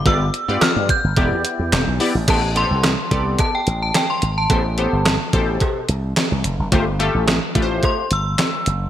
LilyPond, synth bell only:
\new Staff \with { instrumentName = "Synth bell" } { \time 4/4 \key a \minor \tempo 4 = 108 e'''4 f'''8 g'''2 r8 | a''8 c'''4. a''16 g''8 a''16 g''16 c'''8 a''16~ | a''4~ a''16 r2 r8. | r2 c'''8 e'''4. | }